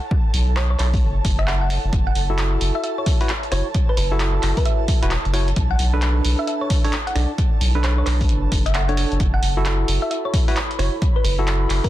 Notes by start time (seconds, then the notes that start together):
Already playing: E4 A4 C#5 A5
0.11 kick
0.34 B1, open hi-hat
0.56 C#5, clap
0.70 C#5
0.79 B1 C#5, clap, open hi-hat
0.94 kick, open hi-hat
1.02 F#1
1.25 F#1, kick, open hi-hat
1.39 E5, finger snap
1.47 F#5, clap
1.61 F#5
1.70 finger snap, open hi-hat
1.84 F#1
1.93 F#1, kick, closed hi-hat
2.07 F#5
2.15 F#1, open hi-hat
2.30 E4 F#4 A4
2.38 clap, closed hi-hat
2.61 F#1, open hi-hat
2.75 E5
2.84 E5, closed hi-hat
2.98 C#5
3.06 kick, open hi-hat
3.21 E4 F#4 B4, open hi-hat
3.29 clap, closed hi-hat
3.43 closed hi-hat
3.52 F#1 E4 F#4 C#5, finger snap, open hi-hat
3.74 kick, closed hi-hat
3.89 B4
3.97 F#1 B4, open hi-hat
4.12 E4 F#4 A4
4.20 clap, closed hi-hat
4.43 F#1, clap, open hi-hat
4.57 B4, kick, open hi-hat
4.65 E5, closed hi-hat
4.88 kick, open hi-hat
5.02 E1 E4 F#4 B4, finger snap, closed hi-hat
5.11 clap, closed hi-hat
5.25 F#1, closed hi-hat
5.33 E4 F#4 C#5, finger snap, open hi-hat
5.48 closed hi-hat
5.56 B1, kick, closed hi-hat
5.71 F#5
5.79 B1, open hi-hat
5.93 D4 A4 B4
6.02 clap, closed hi-hat
6.25 B1, open hi-hat
6.39 E5
6.47 E5, closed hi-hat
6.61 C#5
6.70 kick, open hi-hat
6.84 D4 A4 C#5, open hi-hat
6.93 clap, closed hi-hat
7.07 F#5, closed hi-hat
7.15 B1 D4 A4 D5, finger snap, open hi-hat
7.38 kick, closed hi-hat
7.61 B1, open hi-hat
7.75 D4 A4 B4
7.84 C#5, clap, closed hi-hat
7.98 C#5
8.06 B1 C#5, clap, open hi-hat
8.21 kick, open hi-hat
8.29 F#1, closed hi-hat
8.52 F#1, kick, open hi-hat
8.66 E5, finger snap, closed hi-hat
8.74 F#5, clap, closed hi-hat
8.88 D4 A4 C#5 F#5, closed hi-hat
8.97 finger snap, open hi-hat
9.12 F#1, closed hi-hat
9.20 F#1 B5, kick, closed hi-hat
9.34 F#5
9.42 F#1, open hi-hat
9.57 E4 F#4 A4
9.65 clap, closed hi-hat
9.88 F#1, open hi-hat
10.02 E5
10.11 E5, closed hi-hat
10.25 C#5
10.34 kick, open hi-hat
10.48 E4 F#4 B4, open hi-hat
10.56 clap, closed hi-hat
10.71 closed hi-hat
10.79 F#1 E4 F#4 C#5, finger snap, open hi-hat
11.02 kick, closed hi-hat
11.16 B4
11.24 F#1 B4, open hi-hat
11.39 E4 F#4 A4
11.47 clap, closed hi-hat
11.70 F#1, clap, open hi-hat
11.84 B4, kick, open hi-hat